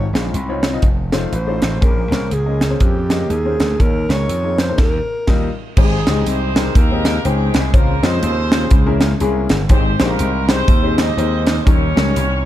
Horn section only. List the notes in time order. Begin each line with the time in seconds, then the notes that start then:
5.77 G#3 C4 D#4 G#4
6.27 C4 D#4 G4 C5
6.76 A#3 D#4 G4 A#4
7.26 G#3 C4 D#4 G#4
7.75 A#3 F4 A#4
8.05 C4 F4 G#4 C5
9.71 C4 D#4 G4 C5
10.00 A#3 D#4 G4 A#4
10.48 C4 D#4 G4 C5
10.98 D#4 G4 C5 D#5
11.47 D#4 D#5
11.65 C#4 G4 A#4 C#5